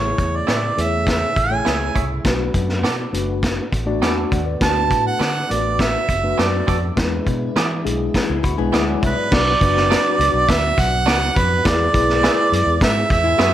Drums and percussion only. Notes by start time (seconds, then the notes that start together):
0.18 kick, closed hi-hat
0.48 snare, closed hi-hat
0.78 closed hi-hat
1.07 kick, snare, closed hi-hat
1.36 kick, closed hi-hat
1.66 snare, closed hi-hat
1.96 kick, closed hi-hat
2.25 kick, snare, closed hi-hat
2.54 kick, closed hi-hat
2.69 snare
2.84 snare, closed hi-hat
3.14 closed hi-hat
3.43 kick, snare, closed hi-hat
3.72 kick, closed hi-hat
4.02 snare, closed hi-hat
4.32 kick, closed hi-hat
4.61 kick, snare, closed hi-hat
4.91 kick, closed hi-hat
5.21 snare, closed hi-hat
5.51 closed hi-hat
5.79 kick, snare, closed hi-hat
6.09 kick, closed hi-hat
6.39 snare, closed hi-hat
6.68 kick, closed hi-hat
6.97 kick, snare, closed hi-hat
7.27 kick, closed hi-hat
7.56 snare, closed hi-hat
7.86 closed hi-hat
8.14 kick, snare, closed hi-hat
8.44 kick, closed hi-hat
8.74 snare, closed hi-hat
9.03 kick, closed hi-hat
9.32 kick, snare, crash
9.61 kick, closed hi-hat
9.77 snare
9.91 snare, closed hi-hat
10.21 closed hi-hat
10.49 kick, snare, closed hi-hat
10.78 kick, closed hi-hat
11.08 snare, closed hi-hat
11.36 kick, closed hi-hat
11.65 kick, snare, closed hi-hat
11.94 kick, closed hi-hat
12.09 snare
12.24 snare, closed hi-hat
12.53 closed hi-hat
12.81 kick, snare, closed hi-hat
13.10 kick, closed hi-hat
13.39 snare, closed hi-hat